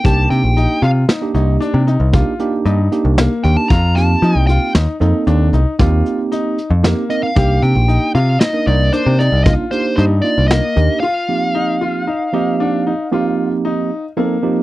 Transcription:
<<
  \new Staff \with { instrumentName = "Lead electric guitar" } { \time 7/4 \key f \mixolydian \tempo 4 = 115 a''8 g''4 f''8 r1 r8 g''16 a''16 | bes''8 a''4 g''8 r1 r8 ees''16 f''16~ | f''8 g''4 f''8 ees''8 d''8 c''8 d''8 ees''8 c''8 c''8 d''8 ees''4 | f''1. r4 | }
  \new Staff \with { instrumentName = "Grand piano" } { \time 7/4 \key f \mixolydian g'4 ees'8 f'8 ees'8 ees'8 d'8 ees'8 f'4 ees'4 bes4 | f'4 ees'8 f'8 ees'8 ees'8 d'8 ees'8 f'4 ees'4 bes4 | g'4 ees'8 f'8 ees'8 ees'8 d'8 ees'8 f'4 ees'4 bes4 | f'4 ees'8 f'8 ees'8 ees'8 d'8 ees'8 f'4 ees'4 bes4 | }
  \new Staff \with { instrumentName = "Tine electric piano" } { \time 7/4 \key f \mixolydian <bes d' ees' g'>4. r8. <bes d' ees' g'>4~ <bes d' ees' g'>16 r8 <bes d' ees' g'>16 r16 <bes d' ees' g'>8. r16 <bes d' ees' g'>8. r16 <bes d' ees' g'>8 | r8 <bes c' ees' g'>4. r8 <bes c' ees' a'>4 r8 <bes c' ees' g'>4. r8 <bes c' ees' g'>16 r16 <bes c' ees' bes'>16 r16 | <bes d' ees' g'>4. r8. <bes d' ees' bes'>4~ <bes d' ees' bes'>16 r8 <bes d' ees' f'>16 r16 <bes d' ees' g'>8. r16 <bes d' ees' f'>8. r16 <bes d' ees' g'>8 | r8 <f bes c' ees' g'>4. r8 <f bes c' ees' g'>4 r8 <f bes c' ees' g'>4. r8 <f bes c' ees' a'>16 r16 <f bes c' ees' g'>16 r16 | }
  \new Staff \with { instrumentName = "Picked electric bass" } { \clef bass \time 7/4 \key f \mixolydian c,8 c16 bes,,8 r16 c8 r8 c,8 r16 c8 c,8 r8. g,8 r16 c,8 r16 ees,16 r16 | f,4 f16 c,8 r16 ees,16 r16 f,16 r16 ees,8 c,16 r16 ees,8 r4 r16 f,8 r8. | c,8 c16 bes,,8 r16 c8 r8 c,8 r16 c8 c,8 r8. g,8 r16 c,8 r16 ees,16 r16 | r1. r4 | }
  \new DrumStaff \with { instrumentName = "Drums" } \drummode { \time 7/4 <hh bd>8 hh8 hh8 hh8 <hh sn>8 hh8 hh8 hh8 <hh bd>8 hh8 hh8 hh8 <hh sn>8 hh8 | <hh bd>8 <hh sn>8 hh8 hh8 <hh sn>8 hh8 hh8 hh8 <hh bd>8 hh8 hh8 hh8 <hh sn>8 hh8 | <hh bd>8 hh8 hh8 hh8 <hh sn>8 hh8 hh8 hh8 <hh bd>8 hh8 hh8 hh8 <hh sn>8 hh8 | r4 r4 r4 r4 r4 r4 r4 | }
>>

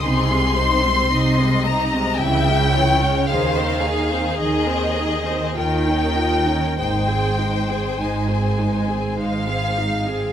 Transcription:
<<
  \new Staff \with { instrumentName = "Violin section" } { \time 3/4 \key aes \major \tempo 4 = 52 c'''4. bes''8 g''4 | f''4 ees''4 g''4 | g''4 aes''4 f''4 | }
  \new Staff \with { instrumentName = "Violin section" } { \time 3/4 \key aes \major aes'8 c''8 ees''4 fes''8 des''8 | c''8 aes'4. bes'4 | c''2~ c''8 r8 | }
  \new Staff \with { instrumentName = "Viola section" } { \time 3/4 \key aes \major <c' ees'>16 <aes c'>16 <c' ees'>16 <aes c'>16 <c' ees'>16 <aes c'>16 <c' ees'>16 <aes c'>16 <fes fes'>16 <aes des'>16 <fes fes'>16 <aes des'>16 | <ees' aes'>16 <c' c''>16 <ees' aes'>16 <c' c''>16 <ees' aes'>16 <c' c''>16 <ees' aes'>16 <c' c''>16 <ees' f'>16 <des' ees'>16 <ees' f'>16 <des' ees'>16 | <aes ees'>16 <c' aes'>16 <aes ees'>16 <c' aes'>16 <aes ees'>16 <c' aes'>16 <aes ees'>16 <c' aes'>16 <aes ees'>16 <c' aes'>16 <aes ees'>16 <c' aes'>16 | }
  \new Staff \with { instrumentName = "Cello section" } { \clef bass \time 3/4 \key aes \major c4 c4 des4 | ees4 ees4 ees4 | aes,4 aes,4 aes,4 | }
  \new Staff \with { instrumentName = "Double bass section" } { \clef bass \time 3/4 \key aes \major c,4 c,4 des,4 | ees,4 ees,4 ees,4 | aes,,4 aes,,4 aes,,4 | }
>>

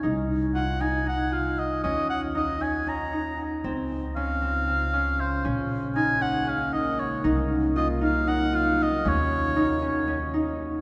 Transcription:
<<
  \new Staff \with { instrumentName = "Oboe" } { \time 7/8 \key ees \dorian \tempo 4 = 116 r4 ges''8 aes''8 ges''8 f''8 ees''8 | ees''8 ges''8 ees''8 aes''8 bes''4 r8 | r4 f''2 c''8 | r4 aes''8 ges''8 f''8 ees''8 des''8 |
r4 ees''8 f''8 ges''8 f''8 ees''8 | des''2~ des''8 r4 | }
  \new Staff \with { instrumentName = "Harp" } { \time 7/8 \key ees \dorian ees'4 f'8 ees'8 ees'8 f'4 | des'4 ees'8 des'8 des'8 ees'4 | c'4 des'8 c'8 c'8 des'4 | des'4 ees'8 des'8 des'8 ees'4 |
ees'4 f'8 ees'8 ees'8 f'4 | des'4 ees'8 des'8 des'8 ees'4 | }
  \new Staff \with { instrumentName = "Ambient pad" } { \clef bass \time 7/8 \key ees \dorian << { r2. r8 | r2. r8 | f'2.~ f'8 | bes2.~ bes8~ |
bes2.~ bes8 | ges'2.~ ges'8 | } \\ { r2. r8 | r2. r8 | <des c''>2.~ <des c''>8 | <des aes>2.~ <des aes>8 |
<c ges>2.~ <c ges>8 | <ees des'>2.~ <ees des'>8 | } >> }
  \new Staff \with { instrumentName = "Upright bass" } { \clef bass \time 7/8 \key ees \dorian c,2.~ c,8 | ees,2.~ ees,8 | des,2.~ des,8 | bes,,2.~ bes,,8 |
c,2.~ c,8 | ees,2.~ ees,8 | }
>>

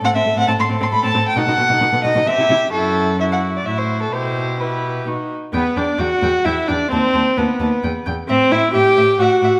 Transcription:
<<
  \new Staff \with { instrumentName = "Violin" } { \time 3/4 \key e \minor \tempo 4 = 131 a'2.~ | a'2 g'4 | fis'4 fis'4 fis'4 | g'4 g'4 fis'8 r8 |
g''8 g''8 g''8 g''8 g''8 g''8 | a''8 a''8 a''8 a''8 g''8 g''8 | e''8 e''8 e''8 e''8 e''8 e''8 | }
  \new Staff \with { instrumentName = "Violin" } { \time 3/4 \key e \minor fis''16 e''8 fis''16 a''16 c'''8 c'''16 b''16 a''8 g''16 | fis''4. dis''8 e''4 | a'4 e''16 fis''8 d''16 e''16 c''8 a'16 | c''4 b'4 r4 |
b'8 d''8 fis''4 e''8 d''8 | c''4 b'4. r8 | c''8 e''8 g''4 fis''4 | }
  \new Staff \with { instrumentName = "Viola" } { \time 3/4 \key e \minor c'16 c'16 a16 c'16 c'16 a16 c'16 c'16 a16 c'16 c'16 r16 | dis'16 dis'16 b16 dis'16 dis'16 b16 dis'16 dis'16 c'16 e'16 e'16 r16 | e'4 e'4 e'4 | e'4 e'4 dis'8 r8 |
b8 d'8 fis'4 e'8 d'8 | c'4 b4. r8 | c'8 e'8 g'4 fis'4 | }
  \new Staff \with { instrumentName = "Cello" } { \clef bass \time 3/4 \key e \minor a,16 a,16 a,16 a,16 a,16 a,16 a,16 a,16 a,16 a,16 a,16 r16 | b,16 b,16 b,16 b,16 b,16 b,16 b,16 b,16 c16 c16 c16 r16 | fis,2 a,4 | b,2 b,8 r8 |
e,8 e,8 e,8 e,8 e,8 e,8 | dis,8 dis,8 dis,8 dis,8 e,8 e,8 | a,8 a,8 a,8 a,8 a,8 a,8 | }
>>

